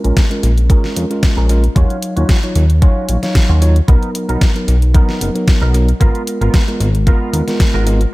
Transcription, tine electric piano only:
0.04 0.23 G#3 medium
0.04 0.23 C#4 medium
0.04 0.23 F4 medium
0.04 0.24 A#4 medium
0.30 0.50 G#3 medium
0.30 0.50 C#4 medium
0.30 0.50 F4 medium
0.30 0.50 A#4 medium
0.69 1.07 G#3 medium
0.69 1.07 C#4 medium
0.69 1.07 F4 medium
0.69 1.07 A#4 loud
1.10 1.46 G#3 medium
1.10 1.46 C#4 medium
1.10 1.47 F4 medium
1.10 1.47 A#4 medium
1.49 1.62 G#3 medium
1.49 1.63 C#4 medium
1.49 1.63 F4 medium
1.49 1.63 A#4 loud
1.75 2.13 F#3 medium
1.75 2.13 D#4 medium
1.75 2.14 C#5 medium
1.75 2.13 F5 medium
2.16 2.36 F#3 medium
2.16 2.36 D#4 medium
2.16 2.36 F4 medium
2.16 2.36 C#5 medium
2.43 2.62 F#3 medium
2.43 2.62 D#4 medium
2.43 2.62 F4 medium
2.43 2.63 C#5 medium
2.82 3.19 F#3 medium
2.82 3.19 D#4 medium
2.82 3.20 C#5 loud
2.82 3.20 F5 medium
3.22 3.59 F#3 medium
3.22 3.59 D#4 medium
3.22 3.59 C#5 medium
3.22 3.59 F5 medium
3.61 3.75 F#3 loud
3.61 3.75 D#4 medium
3.61 3.75 F4 medium
3.61 3.75 C#5 loud
3.88 4.25 F#3 medium
3.88 4.26 B3 medium
3.88 4.26 D#4 medium
3.88 4.26 A#4 medium
4.28 4.48 F#3 medium
4.28 4.48 B3 medium
4.28 4.48 D#4 medium
4.28 4.48 A#4 medium
4.55 4.74 F#3 medium
4.55 4.75 B3 medium
4.55 4.75 D#4 medium
4.55 4.75 A#4 medium
4.94 5.32 F#3 medium
4.94 5.32 B3 medium
4.94 5.32 D#4 medium
4.94 5.32 A#4 loud
5.35 5.71 F#3 medium
5.35 5.71 B3 medium
5.35 5.71 D#4 medium
5.35 5.71 A#4 medium
5.74 5.87 F#3 medium
5.74 5.87 B3 medium
5.74 5.87 D#4 medium
5.74 5.87 A#4 loud
6.00 6.38 G#3 medium
6.00 6.38 B3 medium
6.00 6.38 F4 medium
6.00 6.38 A#4 medium
6.41 6.60 G#3 medium
6.41 6.60 B3 medium
6.41 6.61 F4 medium
6.41 6.61 A#4 medium
6.67 6.87 G#3 medium
6.67 6.87 B3 medium
6.67 6.87 F4 medium
6.67 6.87 A#4 medium
7.06 7.44 G#3 medium
7.06 7.44 B3 medium
7.06 7.44 F4 medium
7.06 7.44 A#4 loud
7.47 7.83 G#3 medium
7.47 7.83 B3 medium
7.47 7.84 F4 medium
7.47 7.84 A#4 medium
7.86 7.99 G#3 medium
7.86 8.00 B3 medium
7.86 8.00 F4 medium
7.86 8.00 A#4 loud

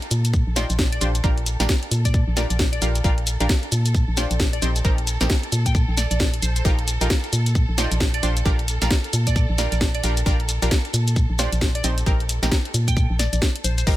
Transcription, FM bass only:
0.11 0.44 A#2 loud
0.47 0.65 A#1 medium
0.70 0.99 A#1 medium
1.01 1.21 A#1 loud
1.24 1.56 A#1 loud
1.60 1.67 A#1 medium
1.91 2.24 A#2 loud
2.28 2.46 A#1 medium
2.50 2.79 A#1 medium
2.82 3.01 A#1 loud
3.04 3.37 A#1 loud
3.40 3.48 A#1 medium
3.72 4.05 A#2 loud
4.08 4.26 A#1 medium
4.31 4.60 A#1 medium
4.62 4.82 A#1 loud
4.85 5.17 A#1 medium
5.21 5.28 A#1 medium
5.52 5.85 A#2 loud
5.88 6.07 A#1 medium
6.11 6.40 A#1 medium
6.42 6.62 A#1 loud
6.65 6.98 A#1 medium
7.01 7.09 A#1 medium
7.33 7.65 A#2 loud
7.69 7.87 A#1 medium
7.91 8.21 A#1 medium
8.23 8.43 A#1 loud
8.45 8.78 A#1 loud
8.82 8.89 A#1 medium
9.13 9.46 A#2 loud
9.50 9.68 A#1 medium
9.72 10.01 A#1 medium
10.04 10.23 A#1 loud
10.26 10.59 A#1 medium
10.62 10.70 A#1 medium
10.94 11.26 A#2 loud
11.30 11.48 A#1 medium
11.52 11.82 A#1 medium
11.84 12.04 A#1 loud
12.06 12.39 A#1 medium
12.43 12.50 A#1 medium
12.74 13.07 A#2 loud
13.10 13.28 A#1 medium
13.33 13.40 A#1 medium
13.64 13.84 A#1 medium
13.87 13.97 A#1 medium

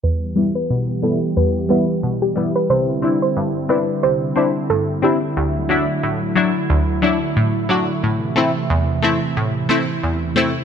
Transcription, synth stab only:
0.03 0.54 E2 medium
0.36 0.51 G3 medium
0.36 0.52 B3 medium
0.36 0.52 E4 medium
0.70 1.21 B2 medium
1.02 1.18 G3 medium
1.02 1.18 B3 medium
1.02 1.19 E4 medium
1.37 1.88 E2 medium
1.69 1.84 G3 medium
1.69 1.85 B3 medium
1.69 1.85 E4 medium
2.03 2.54 B2 medium
2.36 2.51 G3 medium
2.36 2.52 B3 medium
2.36 2.52 E4 medium
2.70 3.21 C3 medium
3.02 3.18 C4 medium
3.02 3.18 D4 medium
3.02 3.19 E4 medium
3.37 3.88 G2 medium
3.69 3.84 C4 medium
3.69 3.85 D4 medium
3.69 3.85 E4 medium
4.03 4.54 C3 medium
4.36 4.51 C4 medium
4.36 4.51 D4 medium
4.36 4.52 E4 medium
4.70 5.21 G2 medium
5.02 5.18 C4 medium
5.02 5.18 D4 medium
5.02 5.19 E4 medium
5.37 5.88 D2 medium
5.69 5.84 F#3 medium
5.69 5.85 D4 medium
5.69 5.85 E4 loud
6.03 6.54 A2 medium
6.35 6.51 F#3 medium
6.35 6.51 D4 medium
6.35 6.52 E4 loud
6.70 7.21 D2 medium
7.02 7.18 F#3 medium
7.02 7.18 D4 medium
7.02 7.19 E4 loud
7.37 7.88 A2 medium
7.69 7.84 F#3 medium
7.69 7.85 D4 medium
7.69 7.85 F#4 loud
8.03 8.54 A2 medium
8.36 8.51 A3 medium
8.36 8.52 C4 medium
8.36 8.52 E4 loud
8.70 9.21 E2 medium
9.02 9.18 A3 medium
9.02 9.18 C4 medium
9.02 9.19 E4 medium
9.37 9.88 A2 medium
9.69 9.84 A3 medium
9.69 9.85 C4 medium
9.69 9.85 E4 loud
10.03 10.54 E2 medium
10.36 10.51 A3 medium
10.36 10.52 C4 medium
10.36 10.52 E4 loud

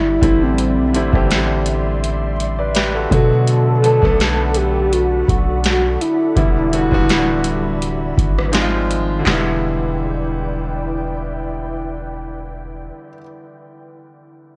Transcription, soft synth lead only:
0.00 0.45 E4 loud
0.43 1.14 C4 medium
3.13 4.58 A4 loud
4.57 4.94 G4 loud
4.93 5.28 F#4 loud
5.29 5.62 F#4 medium
5.65 6.03 F#4 loud
6.01 8.17 E4 loud

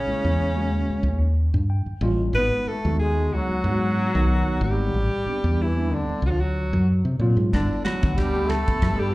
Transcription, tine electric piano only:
0.06 0.52 G#3 medium
0.06 0.53 A#3 medium
0.06 0.53 C#4 medium
0.06 0.53 E4 medium
0.56 1.04 G#3 medium
0.56 1.04 A#3 medium
0.56 1.04 C#4 medium
0.56 1.04 F#4 medium
1.70 2.00 G5 medium
2.01 2.31 G3 medium
2.01 2.32 A#3 medium
2.01 2.32 C#4 medium
2.01 2.32 F4 loud
2.01 2.32 D#5 medium
2.33 2.79 G#3 medium
2.33 2.79 B3 medium
2.33 2.80 D#4 medium
2.33 2.80 F#4 medium
2.84 3.57 G#3 medium
2.84 3.57 B3 medium
2.84 3.57 D#4 medium
2.84 3.58 F#4 medium
3.64 4.09 G#3 medium
3.64 4.09 B3 medium
3.64 4.10 D#4 medium
3.64 4.10 F#4 medium
4.14 4.93 D#3 loud
4.14 4.93 B3 medium
4.14 4.94 D#4 loud
4.14 4.94 F#5 loud
5.25 5.71 G3 medium
5.25 5.71 B3 medium
5.25 5.71 C4 medium
5.25 5.72 D4 medium
5.77 6.23 G3 medium
5.77 6.23 B3 medium
5.77 6.23 C4 medium
5.77 6.24 D4 medium
7.20 7.49 F#3 medium
7.20 7.50 A#3 medium
7.20 7.50 C4 medium
7.20 7.50 F4 loud
7.52 7.97 A3 medium
7.52 7.98 B3 medium
7.52 7.98 D4 medium
7.52 7.98 E4 medium
8.01 8.74 A3 medium
8.01 8.75 B3 medium
8.01 8.75 D4 medium
8.01 8.75 F#5 medium
8.82 9.14 A3 medium
8.82 9.14 B3 medium
8.82 9.14 D4 medium
8.82 9.14 F#4 medium

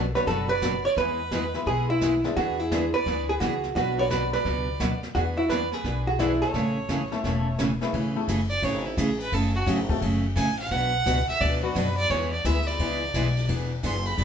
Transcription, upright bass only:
0.00 0.13 B1 medium
0.27 0.83 F#1 medium
0.97 1.53 E2 medium
1.66 2.22 B1 medium
2.36 2.92 E2 medium
3.06 3.36 D2 medium
3.41 3.70 C#2 medium
3.76 4.31 B1 medium
4.45 4.75 C#2 medium
4.80 5.09 D2 medium
5.15 5.70 E2 medium
5.85 6.40 B1 medium
6.54 7.10 A1 medium
7.24 7.79 E1 medium
7.93 8.27 A1 medium
8.28 8.61 F#1 medium
8.62 8.96 G#1 medium
8.97 9.31 A1 medium
9.32 9.66 F#1 medium
9.67 10.00 G#1 loud
10.02 10.35 F#1 medium
10.36 10.70 A1 medium
10.71 11.05 B1 medium
11.06 11.27 C#2 medium
11.29 muted upright bass stroke soft
11.41 11.74 D2 medium
11.75 12.09 F#2 medium
12.10 12.43 E2 medium
12.45 12.78 D2 medium
12.79 13.13 C#2 medium
13.14 13.48 B1 medium
13.49 13.82 E1 medium
13.83 14.17 F#1 medium
14.18 14.24 E1 medium

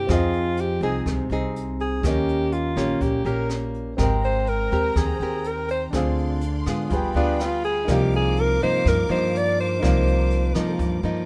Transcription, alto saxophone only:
0.00 0.13 G4 medium
0.12 0.62 F4 medium
0.61 0.83 G4 medium
0.84 1.06 G#4 medium
1.81 2.07 G#4 medium
2.06 2.54 G4 medium
2.53 3.04 F4 medium
3.02 3.28 G4 medium
3.26 3.50 A#4 medium
4.25 4.50 C5 loud
4.49 4.99 A#4 medium
4.97 5.49 G#4 medium
5.47 5.70 A#4 medium
5.71 5.85 C5 medium
7.16 7.43 D4 medium
7.41 7.64 F4 medium
7.65 7.93 G#4 medium
7.92 8.14 G4 medium
8.16 8.42 G#4 medium
8.40 8.63 A#4 medium
8.63 8.90 C5 loud
8.88 9.11 A#4 medium
9.11 9.39 C5 loud
9.38 9.60 D5 loud
9.60 10.77 C5 medium

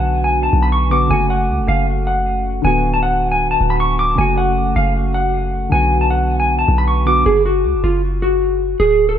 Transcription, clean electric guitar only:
0.00 0.22 F#5 medium
0.24 0.41 G#5 medium
0.43 0.60 A5 medium
0.63 0.71 B5 medium
0.72 0.89 C#6 medium
0.91 1.08 D6 medium
1.11 1.28 G#5 loud
1.30 1.66 F#5 medium
1.68 1.85 F5 medium
2.07 2.61 F#5 medium
2.65 2.92 G#5 loud
2.94 3.02 A5 medium
3.03 3.30 F#5 medium
3.32 3.49 G#5 medium
3.51 3.68 A5 medium
3.70 3.79 B5 medium
3.80 3.97 C#6 medium
3.99 4.16 D6 medium
4.18 4.35 G#5 loud
4.38 4.74 F#5 medium
4.76 4.93 F5 medium
5.14 5.69 F#5 medium
5.72 5.99 G#5 loud
6.01 6.10 A5 medium
6.10 6.38 F#5 medium
6.40 6.56 G#5 medium
6.59 6.76 A5 medium
6.78 6.87 B5 medium
6.88 7.05 C#6 medium
7.07 7.24 D6 medium
7.26 7.43 G#4 loud
7.46 7.82 F#4 medium
7.84 8.01 F4 medium
8.22 8.76 F#4 medium
8.80 9.07 G#4 loud
9.09 9.17 A4 medium

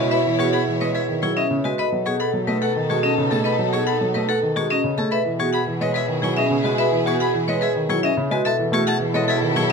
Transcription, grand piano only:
0.00 0.16 G#3 medium
0.26 0.44 E3 medium
0.39 0.58 B3 medium
0.68 0.85 E3 medium
0.81 0.99 G#3 medium
1.08 1.27 D#3 medium
1.23 1.41 F#3 medium
1.51 1.69 C#3 medium
1.64 1.83 G#3 medium
1.92 2.10 F#3 medium
2.06 2.24 B3 medium
2.34 2.52 F#3 medium
2.47 2.66 A3 medium
2.76 2.94 D#3 medium
2.90 3.08 G#3 medium
3.18 3.36 C#3 medium
3.32 3.49 A3 medium
3.59 3.77 F#3 medium
3.74 3.91 B3 medium
4.01 4.19 F#3 medium
4.15 4.33 A3 medium
4.43 4.61 D#3 medium
4.56 4.74 G#3 medium
4.84 5.02 C#3 medium
4.98 5.16 A3 medium
5.25 5.44 E3 medium
5.39 5.58 B3 medium
5.67 5.85 E3 medium
5.81 5.99 G#3 medium
6.08 6.27 D#3 medium
6.23 6.41 F#3 medium
6.50 6.69 C#3 medium
6.64 6.82 G#3 medium
6.92 7.10 E3 medium
7.06 7.24 B3 medium
7.34 7.52 E3 medium
7.48 7.66 G#3 medium
7.76 7.94 D#3 medium
7.89 8.07 F#3 medium
8.17 8.35 C#3 medium
8.31 8.49 G#3 medium
8.59 8.77 E3 medium
8.72 8.91 A3 medium
9.00 9.18 E3 medium
9.14 9.32 G#3 medium
9.42 9.60 D#3 medium
9.56 9.72 F#3 medium

